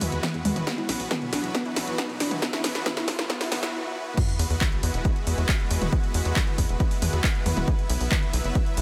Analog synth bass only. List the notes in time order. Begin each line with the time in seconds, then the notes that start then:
0.01 E2
0.12 E2
0.45 E2
0.56 E1
0.89 B1
1.00 B1
1.33 B1
1.44 F#1
1.77 B1
1.88 B1
2.20 B1
2.31 F#1
2.64 B1
2.75 B1
3.08 B1
3.19 F#1
3.52 B1
3.62 B1
4.39 E2
4.50 E2
4.83 E2
4.94 E1
5.27 E2
5.38 E2
5.71 E2
5.82 E1
6.14 E2
6.25 E2
6.58 E2
6.69 E1
7.02 E2
7.13 E2
7.46 E2
7.57 E1
7.90 B1
8.00 B1
8.33 B1
8.44 F#1
8.77 B1